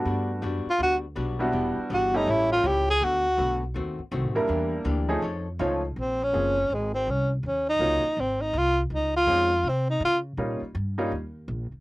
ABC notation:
X:1
M:4/4
L:1/8
Q:"Swing" 1/4=163
K:F
V:1 name="Tenor saxophone"
z3 F ^F z3 | z2 ^F _E =E =F G ^G | ^F3 z4 z | z8 |
[K:Bbm] C D3 A, C D z | D E3 C E F z | E F3 C E F z | z8 |]
V:2 name="Grand piano"
[G,A,=B,D^F]2 z4 z [G,B,DEF]- | [G,=B,DE^F]2 z [G,A,^CEG]3 z2 | z6 z [G,B,DEB]- | [G,B,DEB]2 z [F,A,^C_E^G] z2 [F,A,CEF] z |
[K:Bbm] z2 [F,B,CDA] z4 z | z2 [G,B,DEF] z4 z | z2 [A,CDEF] z4 z | [=G,B,DEF] z2 [G,B,DEF] z4 |]
V:3 name="Hollow-body jazz guitar"
[G,=B,D^F] z [G,B,DF] z [G,B,DF] z [G,B,DF] z | [E,=B,DG] z [E,B,DG] z [A,,G,^CE] z [A,,G,CE] z | [D,A,=B,^F] z [D,A,B,F] z [^D,A,^B,F] z [D,A,B,F] z | [E,B,DG] z [E,B,DG] z [F,_EA^c] z [F,EAc] z |
[K:Bbm] z8 | z8 | z8 | z8 |]
V:4 name="Upright bass" clef=bass
G,,2 ^F,, z D,,2 =B,,,2 | E,,, z G,,,2 A,,,2 ^C,,2 | D,,2 =B,,,2 ^D,, z (3^B,,, A,,, ^F,,, | E,,2 D,,2 F,,2 ^C,,2 |
[K:Bbm] B,,,2 G,,,2 A,,,2 C,,2 | E,,2 D,, z A,,,2 C,,2 | D,,2 F,,2 C,2 D,2 | B,, z =G,,2 E,,2 B,,, z |]